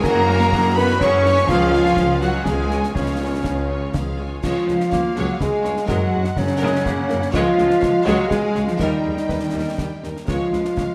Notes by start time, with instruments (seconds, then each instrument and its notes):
0.01 tuba F#1, double bass section F#2, viola section F#3 G#4, cello section A#3, french horn section A#4, cor anglais A#4, violin section A#4 F#5 A#5, flute A#5, concert bass drum, snare
0.29 viola section G#3 F#4, violin section C#5 G#5
0.40 snare
0.53 tuba F#1, double bass section F#2, viola section F#3 G#4, violin section A#4 F#5, concert bass drum, snare
0.76 viola section G#3 F#4, cello section B3, french horn section B4, cor anglais B4, violin section C#5 G#5 B5, flute B5
1.00 tuba F#1, double bass section F#2, viola section F#3 G#4, cello section C#4, violin section A#4 F#5 C#6, french horn section C#5, cor anglais C#5, flute C#6, concert bass drum, snare
1.24 viola section G#3 F#4, violin section C#5 G#5, snare
1.37 snare
1.47 double bass section C#2, tuba C#2, viola section F3 G#4, cello section F3, french horn section F4, cor anglais F4, flute F5, violin section F5, concert bass drum, snare, crash
1.71 viola section G#3 F4, snare
1.77 violin section C#5 G#5
1.86 snare
1.96 double bass section C#2, tuba C#2, viola section F3 G#4, violin section F5, concert bass drum, snare
2.20 cello section F#3, viola section G#3 F4, cor anglais F#4, french horn section F#4, violin section C#5 F#5 G#5, flute F#5, snare
2.44 tuba C#2, double bass section C#2, viola section F3 G#4, cello section G#3, cor anglais G#4, french horn section G#4, violin section F5 G#5, flute G#5, concert bass drum, snare
2.70 viola section G#3 F4, violin section C#5 G#5, snare
2.83 snare
2.94 double bass section C#2, tuba C#2, cello section C#3, viola section F3 G#4, french horn section C#4, cor anglais C#4, flute C#5, violin section C#5 F5, concert bass drum, snare
3.20 viola section G#3 F4, violin section C#5 G#5
3.44 double bass section C#2, tuba C#2, viola section F3 G#4, violin section F5, concert bass drum, snare
3.68 viola section G#3 F4, violin section C#5 G#5
3.93 double bass section C#2, tuba C#2, viola section F3 G#4, violin section F5, concert bass drum, snare
4.19 viola section G#3 F4, violin section C#5 G#5
4.42 double bass section C#2, tuba C#2, cello section F3, viola section G#3, french horn section F4, violin section C#5 F5, flute F5, concert bass drum, snare, crash
4.67 double bass section C#2, tuba C#2, viola section G#3, violin section B4, snare
4.80 snare
4.90 tuba C#2, double bass section C#2, viola section G#3, clarinet A#3, violin section C#5, concert bass drum, snare
5.16 double bass section C#2, tuba C#2, cello section F#3, viola section G#3, french horn section F#4, violin section C#5, flute F#5, snare
5.38 double bass section C#2, tuba C#2, viola section G#3, cello section G#3, french horn section G#4, violin section B4, flute G#5, concert bass drum, snare
5.42 clarinet G#3
5.63 double bass section C#2, viola section G#3, violin section C#5, snare
5.68 tuba C#2
5.77 snare
5.87 tuba F#1, double bass section F#2, cello section F#3, viola section G#3, french horn section F#4, violin section A#4 F#5, flute F#5, concert bass drum, snare
6.11 tuba F#1, double bass section F#2, viola section G#3, violin section G#4
6.24 snare
6.35 tuba F#1, double bass section F#2, cello section C#3, clarinet F#3, viola section G#3, french horn section C#4, violin section A#4, flute C#5, concert bass drum, snare
6.58 viola section G#3, violin section A#4
6.63 tuba F#1, double bass section F#2
6.83 double bass section F#2, viola section G#3, clarinet A#3, violin section G#4, concert bass drum, snare
6.87 tuba F#1
7.09 tuba F#1, double bass section F#2, viola section G#3, violin section A#4, snare
7.22 snare
7.31 tuba C#2, double bass section C#2, cello section F3, viola section G#3, clarinet G#3, french horn section F4, violin section C#5 F5, flute F5, concert bass drum, snare
7.56 tuba C#2, double bass section C#2, viola section G#3, violin section B4, snare
7.70 snare
7.81 double bass section C#2, tuba C#2, viola section G#3, violin section C#5, concert bass drum, snare
8.05 tuba C#2, double bass section C#2, cello section F#3, viola section G#3, french horn section F#4, violin section C#5, flute F#5, snare
8.28 tuba C#2, double bass section C#2, viola section G#3, french horn section G#4, violin section B4, flute G#5, concert bass drum, snare
8.33 cello section G#3
8.54 double bass section C#2, tuba C#2, viola section G#3, violin section C#5, snare
8.65 french horn section F4, flute F5, snare
8.70 cello section F3
8.78 tuba D#2, double bass section D#2, cello section D#3, clarinet G3, french horn section D#4, violin section A#4 G5, concert bass drum, snare
8.82 viola section G3, flute D#5
9.03 tuba D#2, double bass section D#2, viola section G3, violin section G#4
9.17 snare
9.29 tuba D#2, double bass section D#2, viola section G3, violin section B4, concert bass drum, snare
9.54 tuba D#2, double bass section D#2, viola section G3, violin section A#4
9.78 tuba D#2, double bass section D#2, viola section G3, violin section G4, concert bass drum, snare
10.03 tuba D#2, double bass section D#2, viola section G3, violin section A#4, snare
10.17 snare
10.26 tuba C#2, double bass section C#2, cello section F3, viola section G#3, clarinet G#3, french horn section F4, violin section C#5 F5, flute F5, concert bass drum, snare, crash
10.52 double bass section C#2, tuba C#2, viola section G#3, violin section B4, snare
10.65 snare
10.76 double bass section C#2, tuba C#2, viola section G#3, violin section C#5, concert bass drum, snare